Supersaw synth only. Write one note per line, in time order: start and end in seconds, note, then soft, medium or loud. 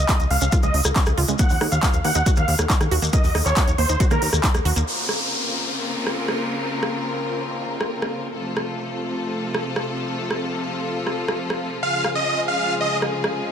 0.00 0.23 D#5 medium
0.31 0.55 F5 medium
0.63 0.80 D#5 medium
1.39 1.64 F#5 loud
1.72 1.97 F5 medium
2.04 2.29 F#5 medium
2.37 2.54 F5 medium
3.13 3.38 D#5 loud
3.46 3.71 C#5 loud
3.78 4.03 C5 medium
4.11 4.28 A#4 medium
11.83 12.08 F5 loud
12.15 12.40 D#5 medium
12.48 12.73 F5 medium
12.81 12.97 D#5 medium